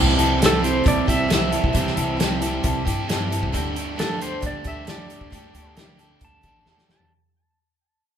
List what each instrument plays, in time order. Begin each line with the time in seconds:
Already playing: upright bass C2, steel-string acoustic guitar C3 E3 G3 C4 E4 A4
0.00 overdriven electric guitar G4
0.09 snare
0.17 steel-string acoustic guitar G3 C4 E4 A4, overdriven electric guitar G4, closed hi-hat
0.38 overdriven electric guitar E3, steel-string acoustic guitar G3 C4 E4 A4, closed hi-hat
0.43 overdriven electric guitar G3 G4, pedal steel guitar A4, snare
0.62 steel-string acoustic guitar G3 C4 E4 A4, overdriven electric guitar G4, pedal steel guitar C5, closed hi-hat
0.84 upright bass C2, steel-string acoustic guitar C3 E3 G3 C4 E4 A4, kick, closed hi-hat
0.88 pedal steel guitar D5
1.06 upright bass C2, steel-string acoustic guitar G3 C4 E4 A4, overdriven electric guitar G4, pedal steel guitar E5, kick, closed hi-hat
1.27 overdriven electric guitar C3 E3, steel-string acoustic guitar G3 C4 E4 A4, snare, closed hi-hat
1.32 overdriven electric guitar G4, pedal steel guitar E5
1.50 steel-string acoustic guitar G3 C4 E4 A4, closed hi-hat
1.63 upright bass C2, kick
1.73 upright bass C2, steel-string acoustic guitar C3 E3 G3 C4 E4 A4, kick, closed hi-hat
1.78 overdriven electric guitar G4
1.87 snare
1.96 upright bass C2, steel-string acoustic guitar G3 C4 E4 A4, overdriven electric guitar G4, closed hi-hat
2.17 overdriven electric guitar E3, steel-string acoustic guitar G3 C4 E4 A4, snare, closed hi-hat
2.21 overdriven electric guitar G3 G4
2.40 steel-string acoustic guitar G3 C4 E4 A4, overdriven electric guitar G4, closed hi-hat
2.63 upright bass C2, steel-string acoustic guitar C3 E3 G3 C4 E4 A4, kick, closed hi-hat
2.85 upright bass G2, steel-string acoustic guitar G3 C4 E4 A4, overdriven electric guitar G4, kick, closed hi-hat
3.08 overdriven electric guitar C3 E3 G4, steel-string acoustic guitar G3 C4 E4 A4, snare, closed hi-hat
3.30 steel-string acoustic guitar G3 C4 E4 A4, closed hi-hat
3.43 upright bass C2, kick
3.52 upright bass D2, steel-string acoustic guitar D3 G3 D4 G4 A4, overdriven electric guitar A3, kick, closed hi-hat
3.75 steel-string acoustic guitar D4 G4 A4, closed hi-hat
3.79 overdriven electric guitar A3
3.96 overdriven electric guitar D3 A3, steel-string acoustic guitar G3 D4 G4 A4, pedal steel guitar A4, snare, closed hi-hat
4.19 steel-string acoustic guitar D4 G4 A4, pedal steel guitar C5, closed hi-hat
4.23 overdriven electric guitar A3
4.40 upright bass D2, steel-string acoustic guitar D3 G3 D4 G4 A4, kick, closed hi-hat
4.47 pedal steel guitar D5
4.63 upright bass D2, steel-string acoustic guitar D4 G4 A4, kick, closed hi-hat
4.67 overdriven electric guitar A3, pedal steel guitar E5
4.85 overdriven electric guitar D3, steel-string acoustic guitar G3 D4 G4 A4, snare, closed hi-hat
4.89 overdriven electric guitar A3 D4, pedal steel guitar D5
5.08 steel-string acoustic guitar D4 G4 A4, closed hi-hat
5.21 upright bass D2, kick
5.30 upright bass D2, steel-string acoustic guitar D3 G3 D4 G4 A4, overdriven electric guitar A3, kick, closed hi-hat
5.53 upright bass D2, overdriven electric guitar A3, steel-string acoustic guitar D4 G4 A4, closed hi-hat
5.75 overdriven electric guitar D3 A3, steel-string acoustic guitar G3 D4 G4 A4, snare, closed hi-hat
5.98 steel-string acoustic guitar D4 G4 A4, closed hi-hat
6.03 overdriven electric guitar A3
6.21 upright bass D2, steel-string acoustic guitar D3 G3 D4 G4 A4, pedal steel guitar A5, kick, closed hi-hat
6.43 upright bass A1, overdriven electric guitar A3, steel-string acoustic guitar D4 G4 A4, kick, closed hi-hat
6.66 upright bass E2, overdriven electric guitar D3 A3, steel-string acoustic guitar G3 D4 G4 A4, snare
6.78 snare
6.88 upright bass D2, steel-string acoustic guitar G4 A4, pedal steel guitar A5, snare
6.93 steel-string acoustic guitar D4
7.00 floor tom